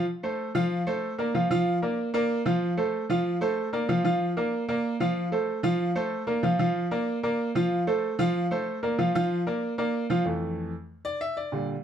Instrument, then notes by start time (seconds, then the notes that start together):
grand piano
0.23 A3 A4 C5
0.55 F3 F4 F5
0.87 A3 A4 C5
1.18 A#3 A#4 D5
1.34 F3 F4 F5
1.50 F3 F4 F5
1.82 A#3 A#4 D5
2.14 A#3 A#4 D5
2.46 F3 F4 F5
2.77 A3 A4 C5
3.10 F3 F4 F5
3.41 A3 A4 C5
3.73 A#3 A#4 D5
3.89 F3 F4 F5
4.04 F3 F4 F5
4.37 A#3 A#4 D5
4.68 A#3 A#4 D5
5.00 F3 F4 F5
5.32 A3 A4 C5
5.63 F3 F4 F5
5.95 A3 A4 C5
6.27 A#3 A#4 D5
6.43 F3 F4 F5
6.59 F3 F4 F5
6.91 A#3 A#4 D5
7.23 A#3 A#4 D5
7.55 F3 F4 F5
7.87 A3 A4 C5
8.19 F3 F4 F5
8.51 A3 A4 C5
8.83 A#3 A#4 D5
8.98 F3 F4 F5
9.15 F3 F4 F5
9.47 A#3 A#4 D5
9.78 A#3 A#4 D5
10.10 F3 F4 F5
10.25 F2 E3 A3
11.05 D5
11.21 E5
11.37 D5
11.52 A#2 D3 G3